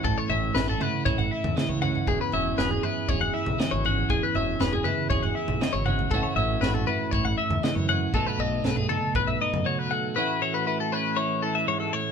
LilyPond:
<<
  \new Staff \with { instrumentName = "Clean electric guitar" } { \time 4/4 \key a \lydian \tempo 4 = 119 a'16 cis''16 e''8 b'16 a'16 b'8 cis''16 fis''16 e''8 dis''16 cis''16 fis''8 | gis'16 b'16 e''8 b'16 gis'16 b'8 cis''16 fis''16 e''8 dis''16 cis''16 fis''8 | gis'16 b'16 e''8 b'16 gis'16 b'8 cis''16 fis''16 e''8 dis''16 cis''16 fis''8 | a'16 cis''16 e''8 b'16 a'16 b'8 cis''16 fis''16 e''8 dis''16 cis''16 fis''8 |
a'16 b'16 dis''8 b'16 gis'16 a'8 b'16 e''16 dis''8 cis''16 b'16 fis''8 | b'8 cis''16 b'16 b'16 a'16 b'8 cis''8 a'16 e''16 cis''16 a'16 cis''8 | }
  \new Staff \with { instrumentName = "Clean electric guitar" } { \time 4/4 \key a \lydian << { e'8 cis'8 e'16 fis'16 e'8 e'8 e'4 cis'8 | r8 cis'8 gis'8 e'8 gis'8 e'4 cis'8 | r8 cis'8 gis'8 e'8 gis'8 e'4 cis'8 | <e cis' e' fis'>8 cis'8 fis'8 e'8 e'8 e'4 cis'8 |
<fis a dis' a'>8 a8 a'8 dis'8 b'8 dis'4 a8 | <e cis' e' fis'>4 e'8 cis'4 e'4. | } \\ { <a, e>2. e4 | e,2. e4 | e,2. e4 | a,2. e4 |
b,2. fis4 | a,8 e4. e4 gis,8 a,8 | } >> }
  \new Staff \with { instrumentName = "Fingered electric bass" } { \clef bass \time 4/4 \key a \lydian a,,16 r16 a,,8 a,,8 r8 a,,8 r16 e,16 r16 cis,8. | e,,16 r16 e,,8 e,,8 r8 e,,8 r16 b,,16 r16 gis,,8. | e,,16 r16 e,,8 e,,8 r8 e,,8 r16 b,,16 r16 gis,,8. | a,,16 r16 a,,8 a,,8 r8 a,,8 r16 e,16 r16 fis,8. |
b,,16 r16 b,,8 b,,8 r8 b,,8 r16 fis,16 r4 | r1 | }
  \new DrumStaff \with { instrumentName = "Drums" } \drummode { \time 4/4 <bd tomfh>8 tomfh8 <sn tomfh>16 tomfh16 <tomfh toml>8 <bd tomfh>16 tomfh8 <tomfh toml>16 <sn toml>8 <tomfh toml>16 tomfh16 | <bd tomfh>8 tomfh8 <sn tomfh>16 tomfh16 tomfh8 <bd tomfh>16 tomfh8 <tomfh toml>16 <sn toml>8 tomfh8 | <bd tomfh>8 tomfh8 <sn tomfh>16 tomfh16 <tomfh toml>8 <bd tomfh>16 tomfh8 <tomfh toml>16 <sn toml>8 <tomfh toml>16 tomfh16 | <bd tomfh>8 tomfh8 <sn tomfh>16 tomfh16 tomfh8 <bd tomfh>16 tomfh8 <tomfh toml>16 <sn toml>8 tomfh8 |
<bd tomfh>8 tomfh8 <sn tomfh>16 tomfh16 <tomfh toml>8 <bd tomfh>16 tomfh8 <tomfh toml>16 r4 | r4 r4 r4 r4 | }
>>